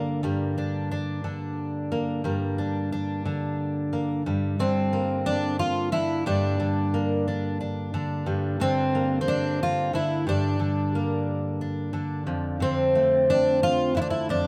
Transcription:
0.00 0.23 G2 medium
0.00 1.23 D3 medium
0.00 0.23 A#3 medium
0.00 0.57 D4 medium
0.23 2.24 G2 medium
0.23 1.91 A#3 medium
0.58 0.91 D4 medium
0.91 2.58 D4 medium
1.24 3.24 D3 medium
1.92 2.24 A#3 medium
2.24 4.25 G2 medium
2.24 3.92 A#3 soft
2.58 2.91 D4 medium
2.92 4.22 D4 medium
3.25 4.58 D3 medium
3.93 4.22 A#3 soft
4.26 6.26 G2 medium
4.59 5.91 D3 medium
4.59 5.93 C4 medium
4.93 6.93 A#3 soft
5.26 5.59 D4 medium
5.59 5.92 F4 medium
5.92 6.58 D3 medium
5.92 6.26 E4 medium
6.26 8.26 G2 medium
6.26 7.26 D4 medium
6.60 7.93 D3 medium
6.94 8.64 A#3 soft
7.28 7.60 D4 soft
7.61 8.61 D4 soft
7.94 8.59 D3 medium
8.26 10.25 G2 medium
8.60 9.92 D3 medium
8.60 9.20 C4 medium
8.95 10.24 A#3 soft
9.21 9.94 C4 medium
9.28 9.61 D4 medium
9.63 9.94 F4 loud
9.93 10.58 D3 medium
9.93 10.28 E4 medium
10.27 12.27 G2 medium
10.27 11.60 D4 medium
10.59 11.92 D3 medium
10.95 12.24 A#3 soft
11.61 12.62 D4 soft
11.93 12.59 D3 medium
12.27 14.29 F2 medium
12.60 13.93 D3 medium
12.60 13.95 C4 medium
12.95 14.47 A3 soft
13.30 13.62 D4 medium
13.63 13.96 F4 loud
13.95 14.47 D3 medium
13.95 14.01 E4 medium
14.02 14.09 D4 medium
14.10 14.29 E4 medium
14.29 14.47 F2 medium
14.29 14.47 D4 medium

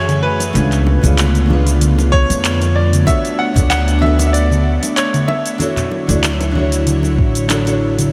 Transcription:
0.00 0.50 F#2 medium
0.00 0.53 E3 medium
0.00 0.50 A3 medium
0.00 5.57 A3 medium
0.00 0.51 C#4 medium
0.00 0.52 E4 medium
0.00 0.52 F#4 medium
0.00 0.53 F#4 loud
0.00 0.53 G#4 medium
0.00 0.53 G#4 loud
0.00 0.24 C#5 loud
0.09 closed hi-hat soft
0.09 low conga medium
0.09 shaker soft
0.23 2.18 B4 loud
0.40 closed hi-hat soft
0.40 high bongo medium
0.40 shaker medium
0.53 0.97 C#2 loud
0.53 3.05 D3 medium
0.53 0.99 A3 loud
0.53 5.57 B3 medium
0.53 0.99 D4 medium
0.53 0.99 F4 medium
0.53 3.05 F4 medium
0.53 1.00 G#4 medium
0.53 1.00 B4 loud
0.53 closed hi-hat medium
0.53 high conga medium
0.53 shaker medium
0.72 clap soft
0.72 closed hi-hat soft
0.72 shaker soft
0.86 high bongo medium
1.02 2.24 C#2 medium
1.02 1.23 A3 medium
1.02 1.24 D4 medium
1.02 1.24 F4 medium
1.02 1.25 G#4 medium
1.02 1.25 C#5 medium
1.02 closed hi-hat soft
1.02 high conga medium
1.02 low conga medium
1.02 shaker medium
1.18 clap loud
1.18 closed hi-hat medium
1.18 shaker medium
1.35 closed hi-hat soft
1.35 shaker soft
1.46 3.02 A3 medium
1.46 3.03 D4 medium
1.46 3.04 F4 medium
1.50 3.05 G#4 medium
1.50 3.06 B4 medium
1.50 high bongo medium
1.50 high conga medium
1.67 closed hi-hat soft
1.67 shaker medium
1.81 closed hi-hat medium
1.81 low conga medium
1.81 shaker medium
1.99 high bongo medium
1.99 shaker soft
2.12 2.78 C#5 loud
2.12 kick loud
2.30 3.02 F2 medium
2.30 closed hi-hat soft
2.30 shaker medium
2.45 clap medium
2.45 closed hi-hat medium
2.45 shaker medium
2.61 closed hi-hat soft
2.61 high bongo soft
2.61 shaker soft
2.76 3.08 D5 medium
2.93 closed hi-hat soft
2.93 low conga medium
2.93 shaker medium
3.06 3.51 B3 medium
3.06 3.52 D4 medium
3.06 5.58 D4 medium
3.06 3.52 F#4 medium
3.06 3.53 A4 medium
3.06 3.53 C#5 loud
3.06 3.40 E5 loud
3.06 kick loud
3.06 closed hi-hat medium
3.06 high bongo medium
3.06 high conga medium
3.06 shaker medium
3.25 closed hi-hat soft
3.25 shaker soft
3.39 3.69 F#5 medium
3.54 4.76 D2 medium
3.54 3.98 B3 medium
3.54 3.98 D4 medium
3.54 3.99 F#4 medium
3.54 3.99 A4 medium
3.54 4.00 C#5 medium
3.54 kick loud
3.54 closed hi-hat soft
3.54 high conga medium
3.54 low conga medium
3.54 shaker medium
3.70 4.03 F#5 loud
3.70 clap loud
3.70 closed hi-hat medium
3.70 high bongo soft
3.70 shaker medium
3.88 closed hi-hat soft
3.88 shaker soft
3.99 5.55 B3 medium
3.99 5.56 D4 medium
3.99 5.57 F#4 medium
3.99 4.25 E5 medium
3.99 high conga medium
4.04 5.58 A4 medium
4.04 5.59 B4 medium
4.19 closed hi-hat soft
4.19 high bongo medium
4.19 shaker medium
4.27 4.34 E5 medium
4.33 4.93 D5 medium
4.33 closed hi-hat medium
4.33 shaker medium
4.51 low conga medium
4.51 shaker soft
4.83 closed hi-hat soft
4.83 high bongo medium
4.83 shaker medium
4.96 5.29 C#5 medium
4.96 clap loud
4.96 closed hi-hat medium
4.96 shaker medium
5.14 closed hi-hat soft
5.14 low conga medium
5.14 shaker soft
5.28 7.77 E5 medium
5.28 high bongo medium
5.46 closed hi-hat soft
5.46 shaker medium
5.58 8.11 D3 medium
5.58 8.10 F#3 medium
5.58 6.04 D4 loud
5.58 6.04 E4 medium
5.58 8.10 E4 medium
5.58 6.05 F#4 medium
5.58 6.05 A4 medium
5.58 8.11 C#5 medium
5.58 6.06 C#5 loud
5.58 closed hi-hat soft
5.58 high conga medium
5.58 shaker medium
5.77 clap soft
5.77 closed hi-hat soft
5.77 low conga medium
5.77 shaker soft
5.91 high bongo soft
6.07 7.18 D2 medium
6.07 6.29 D4 medium
6.07 6.29 E4 medium
6.07 6.30 F#4 medium
6.07 6.30 A4 medium
6.07 6.31 D5 medium
6.07 closed hi-hat soft
6.07 high conga medium
6.07 low conga medium
6.07 shaker medium
6.24 clap loud
6.24 closed hi-hat medium
6.24 shaker medium
6.41 closed hi-hat soft
6.41 high bongo medium
6.41 shaker soft
6.51 7.45 D4 medium
6.51 7.46 E4 medium
6.51 7.47 F#4 medium
6.55 7.48 A4 medium
6.55 7.49 C#5 medium
6.55 high conga medium
6.72 closed hi-hat soft
6.72 shaker medium
6.87 closed hi-hat medium
6.87 low conga medium
6.87 shaker medium
7.03 high bongo soft
7.03 shaker soft
7.18 8.08 A1 loud
7.18 kick loud
7.35 closed hi-hat soft
7.35 shaker medium
7.48 7.62 D4 medium
7.48 7.62 E4 medium
7.48 7.63 F#4 medium
7.48 7.63 A4 medium
7.48 7.64 C#5 medium
7.48 clap medium
7.48 closed hi-hat medium
7.48 high bongo medium
7.48 shaker medium
7.65 8.09 D4 loud
7.65 8.09 E4 medium
7.65 8.10 F#4 medium
7.65 8.10 A4 medium
7.65 8.10 C#5 loud
7.65 closed hi-hat soft
7.65 shaker soft
7.99 closed hi-hat soft
7.99 low conga medium
7.99 shaker medium

